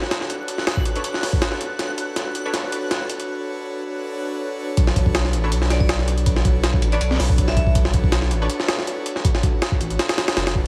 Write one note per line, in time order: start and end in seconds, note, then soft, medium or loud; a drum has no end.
0.00 0.28 D4 medium
0.00 0.28 F#4 medium
0.00 0.28 A4 medium
0.00 0.28 B4 medium
0.00 0.28 C#5 loud
0.00 3.28 F#6 medium
0.00 snare soft
0.11 snare loud
0.11 closed hi-hat medium
0.21 snare soft
0.30 0.84 D4 medium
0.30 0.84 F#4 medium
0.30 0.84 A4 medium
0.30 0.84 B4 medium
0.30 0.84 C#5 medium
0.30 closed hi-hat medium
0.48 closed hi-hat medium
0.58 snare soft
0.67 snare loud
0.67 closed hi-hat medium
0.77 kick loud
0.85 1.77 D4 medium
0.85 1.77 F#4 medium
0.85 1.77 A4 medium
0.85 1.77 B4 medium
0.85 1.77 C#5 loud
0.85 closed hi-hat medium
0.96 1.04 D4 medium
0.96 1.04 A4 medium
0.96 1.04 B4 medium
0.96 1.04 C#5 medium
0.96 closed hi-hat soft
1.04 closed hi-hat medium
1.14 snare soft
1.23 snare soft
1.23 open hi-hat medium
1.33 kick medium
1.42 snare loud
1.42 closed hi-hat medium
1.52 snare soft
1.61 closed hi-hat medium
1.79 2.33 D4 medium
1.79 2.33 F#4 medium
1.79 2.33 A4 medium
1.79 2.33 B4 medium
1.79 2.33 C#5 medium
1.79 snare medium
1.79 closed hi-hat medium
1.98 closed hi-hat medium
2.16 snare medium
2.16 closed hi-hat medium
2.34 3.26 D4 medium
2.34 3.26 F#4 medium
2.34 3.26 A4 medium
2.34 3.26 B4 medium
2.34 3.26 C#5 loud
2.34 closed hi-hat medium
2.45 2.50 D4 medium
2.45 2.50 A4 medium
2.45 2.50 B4 medium
2.45 2.50 C#5 medium
2.54 snare medium
2.54 closed hi-hat medium
2.72 closed hi-hat medium
2.91 snare medium
2.91 closed hi-hat medium
3.10 closed hi-hat medium
3.20 closed hi-hat soft
3.28 3.82 D4 medium
3.28 3.82 F#4 medium
3.28 3.82 A4 medium
3.28 3.82 B4 medium
3.28 3.82 C#5 medium
3.84 4.57 D4 medium
3.84 4.57 F#4 medium
3.84 4.57 A4 medium
3.84 4.57 B4 medium
3.84 4.57 C#5 loud
4.59 4.75 D4 medium
4.59 4.75 F#4 medium
4.59 4.75 A4 medium
4.59 4.75 B4 medium
4.59 4.75 C#5 loud
4.77 5.35 B1 loud
4.77 5.31 D4 medium
4.77 5.31 F#4 medium
4.77 5.31 A4 medium
4.77 5.31 B4 medium
4.77 5.31 C#5 medium
4.77 kick loud
4.77 closed hi-hat medium
4.87 snare medium
4.96 kick loud
4.96 closed hi-hat medium
5.06 kick loud
5.15 snare loud
5.15 closed hi-hat medium
5.25 snare soft
5.33 5.54 A1 medium
5.33 6.24 D4 loud
5.33 6.24 F#4 medium
5.33 6.24 A4 medium
5.33 6.24 B4 medium
5.33 6.24 C#5 loud
5.33 closed hi-hat medium
5.44 5.48 D4 medium
5.44 5.48 A4 medium
5.44 5.48 B4 medium
5.44 5.48 C#5 medium
5.52 6.84 B1 loud
5.52 closed hi-hat medium
5.62 snare soft
5.70 5.77 D5 medium
5.70 snare medium
5.70 closed hi-hat medium
5.80 5.86 D5 medium
5.80 kick loud
5.89 snare loud
5.89 closed hi-hat medium
5.99 snare soft
6.08 closed hi-hat medium
6.18 closed hi-hat soft
6.26 6.80 D4 medium
6.26 6.80 F#4 medium
6.26 6.80 A4 medium
6.26 6.80 B4 medium
6.26 6.80 C#5 medium
6.26 kick loud
6.26 closed hi-hat medium
6.36 snare medium
6.45 kick loud
6.45 closed hi-hat medium
6.64 snare loud
6.64 closed hi-hat medium
6.74 kick loud
6.82 6.99 A1 medium
6.82 7.73 D4 medium
6.82 7.73 F#4 medium
6.82 7.73 A4 medium
6.82 7.73 B4 medium
6.82 7.73 C#5 loud
6.82 closed hi-hat medium
6.92 7.00 D4 medium
6.92 7.00 A4 medium
6.92 7.00 B4 medium
6.92 7.00 C#5 medium
6.92 6.98 D5 medium
6.92 closed hi-hat soft
7.01 7.18 B1 medium
7.01 7.07 D5 medium
7.01 closed hi-hat medium
7.11 snare soft
7.20 8.33 B1 loud
7.20 snare soft
7.20 open hi-hat medium
7.30 kick loud
7.38 kick loud
7.38 closed hi-hat medium
7.48 7.53 E5 medium
7.48 snare medium
7.57 7.63 E5 medium
7.57 kick medium
7.57 closed hi-hat medium
7.67 kick medium
7.75 8.29 D4 medium
7.75 8.29 F#4 medium
7.75 8.29 A4 medium
7.75 8.29 B4 medium
7.75 8.29 C#5 medium
7.75 kick loud
7.75 closed hi-hat medium
7.85 snare medium
7.94 kick loud
7.94 closed hi-hat medium
8.04 kick loud
8.12 snare loud
8.12 closed hi-hat medium
8.22 snare soft
8.31 8.48 A1 medium
8.31 9.22 D4 medium
8.31 9.22 F#4 medium
8.31 9.22 A4 medium
8.31 9.22 B4 medium
8.31 9.22 C#5 loud
8.31 closed hi-hat medium
8.42 8.46 D4 medium
8.42 8.46 A4 medium
8.42 8.46 B4 medium
8.42 8.46 C#5 medium
8.50 closed hi-hat medium
8.60 snare soft
8.68 snare loud
8.68 closed hi-hat medium
8.79 snare soft
8.87 closed hi-hat medium
9.06 closed hi-hat medium
9.16 snare soft
9.24 9.78 D4 medium
9.24 9.78 F#4 medium
9.24 9.78 A4 medium
9.24 9.78 B4 medium
9.24 9.78 C#5 medium
9.24 kick loud
9.24 closed hi-hat loud
9.35 snare medium
9.43 kick loud
9.43 closed hi-hat medium
9.62 snare loud
9.62 closed hi-hat medium
9.72 kick loud
9.80 9.97 A1 medium
9.80 10.67 D4 medium
9.80 10.67 F#4 medium
9.80 10.67 A4 medium
9.80 10.67 B4 medium
9.80 10.67 C#5 loud
9.80 closed hi-hat medium
9.90 closed hi-hat soft
9.99 snare loud
9.99 closed hi-hat medium
10.09 snare loud
10.09 closed hi-hat medium
10.18 snare loud
10.18 closed hi-hat medium
10.28 snare loud
10.28 closed hi-hat medium
10.37 10.67 F#1 medium
10.37 snare loud
10.37 closed hi-hat medium
10.47 snare loud
10.47 closed hi-hat medium
10.55 kick medium